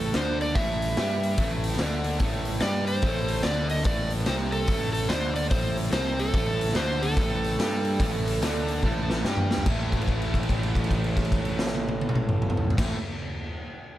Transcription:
Already playing: A1 A2 A3 A4
0.14 D2 D3 D4 C5, snare, open hi-hat
0.41 D5, open hi-hat
0.55 A1 A2 A3 E5, kick, open hi-hat
0.82 open hi-hat
0.97 G2 G3 G4, snare, open hi-hat
1.23 open hi-hat
1.38 A1 A2 A3, kick, open hi-hat
1.64 open hi-hat
1.72 snare
1.79 D2 D3 D4, snare, open hi-hat
2.04 open hi-hat
2.20 A1 A2 A3, kick, open hi-hat
2.45 open hi-hat
2.60 G2 G3 G4 D5, snare, open hi-hat
2.87 C5, open hi-hat
3.02 A1 A2 A3, kick, open hi-hat
3.28 open hi-hat
3.43 D2 D3 D4 D5, snare, open hi-hat
3.69 D#5, open hi-hat
3.78 snare
3.84 A1 A2 A3 D5, kick, open hi-hat
4.10 open hi-hat
4.26 C2 C3 C4 C5, snare, open hi-hat
4.52 A4, open hi-hat
4.67 A1 A2 A3, kick, open hi-hat
4.93 A4, open hi-hat
5.09 D2 D3 D4 C5, snare, open hi-hat
5.36 D5, open hi-hat
5.50 A1 A2 A3 C5, kick, open hi-hat
5.77 open hi-hat
5.92 C2 C3 C4 C5, snare, open hi-hat
6.19 A4, open hi-hat
6.33 A1 A2 A3, kick, open hi-hat
6.61 open hi-hat
6.69 snare
6.75 D2 D3 D4 C5, snare, open hi-hat
7.02 A4, open hi-hat
7.10 snare
7.17 A1 A2 A3, kick, open hi-hat
7.44 open hi-hat
7.59 G2 G3 G4, snare, open hi-hat
7.85 open hi-hat
8.00 A1 A2 A3, kick, open hi-hat
8.27 open hi-hat
8.41 D2 D3 D4, snare, open hi-hat
8.68 open hi-hat
8.83 A1 A2 A3, kick
9.10 snare
9.25 G2 G3 G4, snare
9.37 mid tom
9.51 snare
9.58 floor tom
9.66 A1 A2 E3, kick, crash
9.70 A3
9.92 kick, crash
10.01 crash
10.08 kick, crash
10.22 crash
10.34 kick, crash
10.43 crash
10.49 kick, crash
10.63 crash
10.75 kick, crash
10.84 crash
10.91 kick, crash
11.04 crash
11.17 kick, crash
11.25 crash
11.32 kick, crash
11.45 crash
11.59 snare
11.67 snare
11.75 high tom
11.89 high tom
12.01 high tom
12.09 mid tom
12.15 mid tom
12.29 mid tom
12.42 mid tom
12.50 mid tom
12.57 floor tom
12.70 floor tom
12.77 A1 A2 E3, kick, snare, crash
12.82 A3

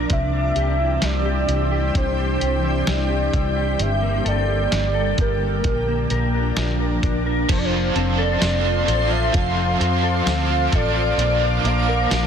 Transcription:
Already playing: A#2 F3 A#3 D4 A#4
0.08 C2 C3 E3 G3 C4 G4, kick, closed hi-hat
0.12 E5
0.33 D4
0.56 C2 G4, closed hi-hat
0.78 E4
1.02 C2 G3 D5, snare, closed hi-hat
1.25 G4
1.48 C2 E4, closed hi-hat
1.71 G4
1.94 C2 C3 C5, kick, closed hi-hat
2.17 D4
2.40 C2 G4, closed hi-hat
2.64 E4
2.86 C2 G3 D5, snare, closed hi-hat
3.09 G4
3.33 C2 E4, kick, closed hi-hat
3.56 G4
3.79 G1 G2 D3 A#3 E5, closed hi-hat
4.02 A#3
4.25 G1 A4 D5, closed hi-hat
4.48 G4
4.71 G1 G3, snare, closed hi-hat
4.94 A4
5.18 G1 G4 A#4, kick, closed hi-hat
5.64 A#1 A#2 F3 D4, kick, closed hi-hat
5.87 A#3
6.10 A#1 A#4, closed hi-hat
6.34 D4
6.56 A#1 F3, snare, closed hi-hat
6.80 A#4
7.03 A#1 D4, kick, closed hi-hat
7.26 A#4
7.49 F1 F3 C4 F4 A4 C5 F5 C6, kick, closed hi-hat, crash
7.53 A4
7.58 D5
7.65 C5
7.72 F4
7.95 F1 C4 F4 A4, closed hi-hat
8.00 C4
8.18 A4 D5
8.40 F1 F3 C4 F4, snare, closed hi-hat, tambourine
8.45 A4
8.64 F4
8.86 A1 F4 A4, closed hi-hat
8.91 C4
9.10 F4 E5
9.32 F1 F3 C4 F4 A4 F5 D6, kick, closed hi-hat
9.57 F4
9.80 F2 C4 F4 A4, closed hi-hat
9.84 C4
10.03 A4
10.26 D2 F3 C4 F4, snare, closed hi-hat, tambourine
10.31 A4
10.49 F4
10.72 A1 F4 A4 D5, kick, closed hi-hat
10.77 C4
10.96 F4
11.18 A#1 A#2 D3 F3 A#3 D4 A#4 D5, closed hi-hat
11.22 A#4
11.42 D4
11.64 A#1 A#3 D4 A#4 F5, closed hi-hat
11.68 F3 A#3
11.88 A#4
12.10 A#1 F3 A#3 D4, snare, closed hi-hat, tambourine
12.15 A#4

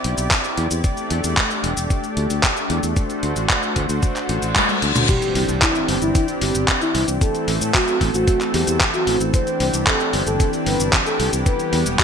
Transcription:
Already playing: C4 E4 G4 D5
0.04 B1, closed hi-hat
0.18 B1, closed hi-hat, cabasa
0.31 kick, clap, closed hi-hat, cabasa
0.44 closed hi-hat, cabasa
0.57 E2, closed hi-hat
0.71 E2, closed hi-hat, cabasa
0.84 A3 D4 G4, kick, closed hi-hat, cabasa
0.97 closed hi-hat, cabasa
1.10 E2, closed hi-hat
1.24 E2, closed hi-hat, cabasa
1.37 kick, clap, closed hi-hat, cabasa
1.51 closed hi-hat, cabasa
1.64 E1, closed hi-hat
1.77 E1, closed hi-hat, cabasa
1.90 kick, closed hi-hat, cabasa
2.04 closed hi-hat, cabasa
2.17 D2, closed hi-hat
2.30 D2, closed hi-hat, cabasa
2.43 kick, clap, closed hi-hat, cabasa
2.57 closed hi-hat, cabasa
2.70 E2, closed hi-hat
2.83 E2, closed hi-hat, cabasa
2.96 F#4 C5, kick, closed hi-hat, cabasa
3.10 closed hi-hat, cabasa
3.23 D2, closed hi-hat
3.36 A1, closed hi-hat, cabasa
3.50 kick, clap, closed hi-hat, cabasa
3.63 closed hi-hat, cabasa
3.76 D2, kick, closed hi-hat
3.89 D2, closed hi-hat, cabasa
4.03 kick, closed hi-hat, reverse cymbal, cabasa
4.16 clap, closed hi-hat, cabasa
4.29 A1, closed hi-hat
4.42 A1, closed hi-hat, cabasa
4.56 kick, clap, closed hi-hat, high tom, cabasa
4.69 closed hi-hat, high tom, cabasa
4.82 D2, closed hi-hat
4.96 D2, closed hi-hat, mid tom, cabasa
5.09 E3 C4 D4 G4, kick, closed hi-hat, crash, impact, cabasa
5.22 closed hi-hat, cabasa
5.35 C2, open hi-hat
5.49 C2, closed hi-hat, cabasa
5.62 E4, kick, clap, closed hi-hat, cabasa
5.75 closed hi-hat, cabasa
5.88 G1, open hi-hat
6.02 G1 E4, closed hi-hat, cabasa
6.15 kick, closed hi-hat, cabasa
6.28 closed hi-hat, cabasa
6.41 G1 G4, open hi-hat
6.55 G1, closed hi-hat, cabasa
6.68 kick, clap, closed hi-hat, cabasa
6.81 E4, closed hi-hat, cabasa
6.95 C2, open hi-hat
7.08 C2, closed hi-hat, cabasa
7.21 A3 C4 A4, kick, closed hi-hat, cabasa
7.35 closed hi-hat, cabasa
7.48 A1, open hi-hat
7.61 A2, closed hi-hat, cabasa
7.74 F#4, kick, clap, closed hi-hat, cabasa
7.88 closed hi-hat, cabasa
8.01 A1, kick, open hi-hat
8.14 A1 F#4, closed hi-hat, cabasa
8.28 kick, closed hi-hat, cabasa
8.41 clap, closed hi-hat, cabasa
8.54 E2 G4, open hi-hat
8.67 E2, closed hi-hat, cabasa
8.81 kick, clap, closed hi-hat, cabasa
8.94 F#4, closed hi-hat, cabasa
9.07 A1, open hi-hat
9.20 A1, closed hi-hat, cabasa
9.34 D4 G4 C5, kick, closed hi-hat, cabasa
9.47 closed hi-hat, cabasa
9.60 C2, open hi-hat
9.73 C2, closed hi-hat, cabasa
9.87 A4, kick, clap, closed hi-hat, cabasa
10.00 closed hi-hat, cabasa
10.13 G1, open hi-hat
10.27 G1 A4, closed hi-hat, cabasa
10.40 kick, closed hi-hat, cabasa
10.53 closed hi-hat, cabasa
10.66 G1 B4, open hi-hat
10.80 G1, closed hi-hat, cabasa
10.93 kick, clap, closed hi-hat, cabasa
11.06 A4, closed hi-hat, cabasa
11.20 C2, open hi-hat
11.33 C2, closed hi-hat, cabasa
11.46 G3 B3 B4, kick, closed hi-hat, cabasa
11.60 closed hi-hat, cabasa
11.73 E2, open hi-hat
11.86 E1, closed hi-hat, cabasa
11.99 G4, kick, clap, closed hi-hat, cabasa

